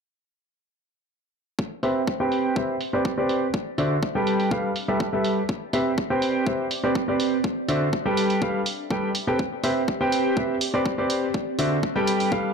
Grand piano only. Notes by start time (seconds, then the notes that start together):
1.83 C4 G4 B4 C5 E5
2.20 C4 G4 B4 C5 G5
2.56 C4 G4 B4 C5 E5
2.93 C4 G4 B4 C5 D5
3.18 C4 G4 B4 C5 D5
3.78 D3 F#4 C5 D5 E5
4.15 G3 G4 A4 B4 G5
4.51 G3 G4 A4 B4 F5
4.88 G3 G4 A4 B4 E5
5.13 G3 G4 A4 B4 E5
5.73 C4 G4 B4 C5 E5
6.10 C4 G4 B4 C5 G5
6.46 C4 G4 B4 C5 E5
6.84 C4 G4 B4 C5 D5
7.08 C4 G4 B4 C5 D5
7.68 D3 F#4 C5 D5 E5
8.06 G3 G4 A4 B4 G5
8.42 G3 G4 A4 B4 F5
8.90 G3 G4 A4 B4 G5
9.27 C4 G4 A4 B4 G5
9.64 C4 G4 B4 C5 E5
10.01 C4 G4 B4 C5 G5
10.37 C4 G4 B4 C5 E5
10.74 C4 G4 B4 C5 D5
10.98 C4 G4 B4 C5 D5
11.59 D3 F#4 C5 D5 E5
11.96 G3 G4 A4 B4 G5
12.32 G3 G4 A4 B4 F5